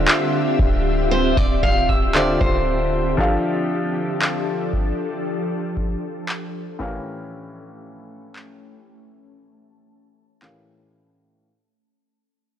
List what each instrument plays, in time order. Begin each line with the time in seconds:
Already playing: felt piano D3 D4 F4 G4 C5 E5, ambient pad D3 C4 F4 G4 E5
0.08 clap
0.59 808-style bass D1, kick
1.11 steel-string acoustic guitar C5
1.37 808-style bass D1, steel-string acoustic guitar D5, kick
1.63 steel-string acoustic guitar F5, kick
1.89 steel-string acoustic guitar E5, kick
2.14 felt piano D3 D4 F4 G4 C5 E5, steel-string acoustic guitar D5, clap
2.41 808-style bass D1, steel-string acoustic guitar C5, kick
3.17 felt piano F3 D4 G4 A4 F5, ambient pad F3 D4 A4, kick
4.22 clap
4.73 kick
5.77 kick
6.29 clap
6.79 felt piano A2 E3 C#4 G4 A#4 F5, ambient pad A3 C#4, kick
8.36 clap
8.87 ambient pad A5
10.42 felt piano A2 E3 C#4 G4 A#4 F5, clap